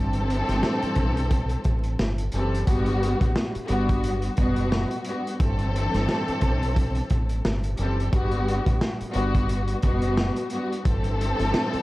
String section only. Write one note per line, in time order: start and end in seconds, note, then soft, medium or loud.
0.00 2.16 G2 loud
0.00 2.16 E3 loud
0.00 2.16 C4 loud
0.00 2.17 A4 loud
2.33 2.65 E3 medium
2.33 2.64 G3 medium
2.33 2.66 C4 medium
2.33 2.66 A4 medium
2.65 3.46 G2 medium
2.65 3.46 G3 medium
2.65 3.47 B3 loud
2.65 3.47 F#4 loud
3.66 4.31 G2 loud
3.66 4.32 G3 loud
3.66 4.32 B3 loud
3.66 4.33 F#4 loud
4.36 5.00 B2 loud
4.36 5.01 G3 medium
4.36 5.01 B3 medium
4.36 5.02 F#4 loud
5.05 5.37 G2 medium
5.05 5.38 G3 medium
5.05 5.38 B3 medium
5.05 5.39 F#4 medium
5.38 7.61 G2 loud
5.38 7.62 E3 loud
5.38 7.62 C4 loud
5.38 7.63 A4 loud
7.78 8.11 E3 medium
7.78 8.10 G3 medium
7.78 8.11 C4 medium
7.78 8.12 A4 medium
8.10 8.91 G2 loud
8.10 8.92 G3 medium
8.10 8.92 B3 medium
8.10 8.93 F#4 loud
9.12 9.77 G2 loud
9.12 9.77 G3 loud
9.12 9.78 B3 medium
9.12 9.78 F#4 loud
9.81 10.46 B2 loud
9.81 10.46 G3 medium
9.81 10.47 B3 medium
9.81 10.47 F#4 loud
10.51 10.82 G2 medium
10.51 10.83 G3 medium
10.51 10.84 B3 medium
10.51 10.84 F#4 medium
10.83 11.82 G2 loud
10.83 11.82 E3 loud
10.83 11.82 C4 loud
10.83 11.82 A4 loud